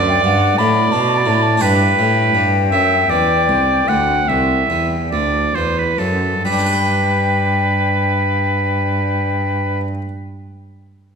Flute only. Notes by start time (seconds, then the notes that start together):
0.09 G5
0.25 F#5
0.58 B5
0.92 A5
1.01 B5
1.09 A5
1.18 B5
1.27 A5
1.34 B5
1.42 A5
1.61 G5
6.45 G5